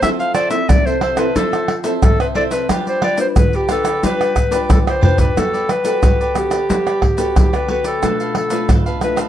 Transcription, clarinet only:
0.02 0.10 E5 loud
0.20 0.34 F5 loud
0.35 0.50 D5 loud
0.50 0.70 E5 medium
0.69 0.87 D5 loud
0.86 1.02 C5 medium
1.02 1.20 C5 medium
1.18 1.38 B4 medium
1.36 1.76 A4 medium
2.04 2.19 A4 loud
2.20 2.28 B4 medium
2.36 2.44 D5 medium
2.52 2.67 B4 medium
2.88 3.03 C5 medium
3.04 3.19 D5 medium
3.21 3.28 C5 medium
3.38 3.57 B4 medium
3.56 3.71 G4 medium
3.72 4.02 A4 medium
4.05 4.67 B4 medium
4.72 4.79 A4 medium
4.89 5.03 C5 medium
5.04 5.19 C5 medium
5.20 5.40 B4 medium
5.38 5.73 A4 medium
5.71 6.39 B4 medium
6.37 7.37 G4 medium
7.38 7.57 G4 medium
7.56 7.71 B4 medium
7.71 7.86 B4 medium
7.87 8.33 A4 medium
8.37 8.74 A4 medium
9.04 9.18 B4 medium

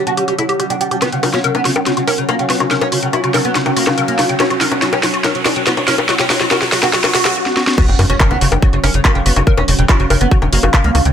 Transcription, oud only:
0.07 0.12 F#4 medium
0.17 0.22 G3 medium
0.28 0.33 G3 medium
0.38 0.43 E4 medium
0.49 0.54 G3 medium
0.60 0.65 G3 medium
0.70 0.75 D4 loud
0.81 0.86 G3 medium
0.91 0.96 G3 medium
1.02 1.07 B3 medium
1.12 1.17 C#3 medium
1.23 1.28 C#3 medium
1.34 1.39 C#4 medium
1.44 1.49 C#3 medium
1.55 1.60 B3 medium
1.65 1.70 C#3 medium
1.86 1.91 C#3 medium
1.97 2.02 C#3 medium
2.08 2.13 C#4 medium
2.18 2.23 C#3 medium
2.29 2.34 A#3 medium
2.39 2.44 C#3 medium
2.50 2.55 B3 medium
2.60 2.65 C#3 medium
2.71 2.76 C#3 medium
2.81 2.86 C#4 medium
2.92 2.97 C#3 medium
3.03 3.08 C#3 medium
3.13 3.18 E4 medium
3.24 3.29 C#3 medium
3.34 3.39 C#3 medium
3.45 3.50 B3 medium
3.55 3.60 C#3 medium
3.66 3.71 C#3 medium
3.77 3.82 A#3 loud
3.87 3.92 C#3 medium
3.98 4.03 C#3 medium
4.08 4.13 A#3 loud
4.19 4.24 C#3 medium
4.29 4.34 C#3 medium
4.40 4.45 C#4 medium
4.51 4.56 F#3 medium
4.61 4.66 F#3 medium
4.72 4.77 D4 medium
4.82 4.87 F#3 medium
4.93 4.98 C#4 medium
5.03 5.08 F#3 medium
5.24 5.29 F#3 medium
5.35 5.40 F#3 medium
5.46 5.51 D4 medium
5.56 5.61 F#3 medium
5.67 5.72 B3 medium
5.77 5.82 F#3 medium
5.88 5.93 C#4 loud
5.98 6.03 F#3 medium
6.09 6.14 F#3 medium
6.20 6.25 C#4 loud
6.30 6.35 F#3 medium
6.41 6.46 F#3 medium
6.51 6.56 F#4 medium
6.62 6.67 F#3 medium
6.72 6.77 F#3 medium
6.83 6.88 F#4 medium
6.94 6.98 F#3 medium
7.04 7.09 F#3 medium
7.15 7.20 F#4 loud
7.25 7.30 F#3 medium
7.78 7.83 B3 loud
7.89 7.94 C#3 medium
7.99 8.04 C#3 medium
8.10 8.15 C#4 loud
8.20 8.25 C#3 medium
8.31 8.36 B3 medium
8.41 8.46 C#3 medium
8.62 8.67 C#3 medium
8.73 8.78 C#3 medium
8.84 8.89 C#4 medium
8.94 8.99 C#3 medium
9.05 9.10 A#3 medium
9.15 9.20 C#3 medium
9.26 9.31 B3 medium
9.36 9.41 C#3 medium
9.47 9.52 C#3 medium
9.58 9.63 C#4 loud
9.68 9.73 C#3 medium
9.79 9.84 C#3 medium
9.89 9.94 E4 medium
10.00 10.05 C#3 medium
10.10 10.15 C#3 medium
10.21 10.26 B3 medium
10.31 10.36 C#3 medium
10.42 10.47 C#3 medium
10.53 10.58 A#3 loud
10.63 10.68 C#3 medium
10.74 10.79 C#3 medium
10.84 10.89 A#3 loud
10.95 11.00 C#3 medium
11.05 11.10 C#3 medium

